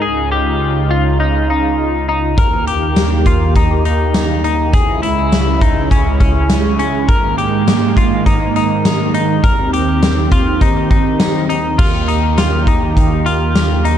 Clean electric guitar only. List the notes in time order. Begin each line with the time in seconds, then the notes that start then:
0.02 G#4
0.32 G4
0.91 F4
1.20 D#4
1.50 D#4
2.09 D#4
2.38 A#4
2.67 G4
3.26 F4
3.56 D#4
3.85 D#4
4.44 D#4
4.74 G#4
5.03 E4
5.62 D#4
5.91 C#4
6.20 C#4
6.79 C#4
7.08 A#4
7.38 G4
7.97 F4
8.26 D#4
8.56 D#4
9.14 D#4
9.44 A#4
9.73 G4
10.32 F4
10.61 D#4
10.91 D#4
11.49 D#4
11.78 F4
12.08 D#4
12.38 F4
12.68 D#4
13.26 F4
13.85 D#4